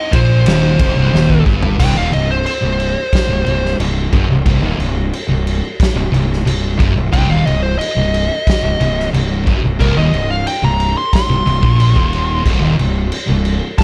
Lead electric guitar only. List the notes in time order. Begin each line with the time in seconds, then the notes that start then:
Already playing: D#5
0.12 C5
1.80 G5
1.97 F5
2.13 D#5
2.31 C5
2.46 C5
7.13 G5
7.29 F5
7.46 D#5
7.63 C5
7.79 D#5
9.80 A#4
9.97 D#5
10.31 F5
10.48 G5
10.64 A#5
10.97 C6
11.14 C6
13.78 A#5